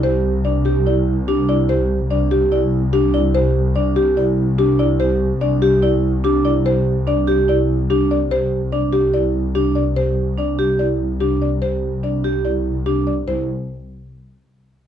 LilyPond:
<<
  \new Staff \with { instrumentName = "Marimba" } { \time 4/4 \key c \major \tempo 4 = 145 c''8 r8 d''8 g'8 d''8 r8 g'8 d''8 | c''8 r8 d''8 g'8 d''8 r8 g'8 d''8 | c''8 r8 d''8 g'8 d''8 r8 g'8 d''8 | c''8 r8 d''8 g'8 d''8 r8 g'8 d''8 |
c''8 r8 d''8 g'8 d''8 r8 g'8 d''8 | c''8 r8 d''8 g'8 d''8 r8 g'8 d''8 | c''8 r8 d''8 g'8 d''8 r8 g'8 d''8 | c''8 r8 d''8 g'8 d''8 r8 g'8 d''8 |
c''8 r2. r8 | }
  \new Staff \with { instrumentName = "Vibraphone" } { \time 4/4 \key c \major g'8 r8 d'8 g'8 e'8 r8 d'8 e'8 | g'8 r8 d'8 g'8 e'8 r8 d'8 e'8 | g'8 r8 d'8 g'8 e'8 r8 d'8 e'8 | g'8 r8 d'8 g'8 e'8 r8 d'8 e'8 |
g'8 r8 d'8 g'8 e'8 r8 d'8 r8 | g'8 r8 d'8 g'8 e'8 r8 d'8 r8 | g'8 r8 d'8 g'8 e'8 r8 d'8 r8 | g'8 r8 d'8 g'8 e'8 r8 d'8 r8 |
e'8 r2. r8 | }
  \new Staff \with { instrumentName = "Double bass section" } { \clef bass \time 4/4 \key c \major c,1~ | c,1~ | c,1~ | c,1~ |
c,1~ | c,1~ | c,1~ | c,1 |
c,8 r2. r8 | }
>>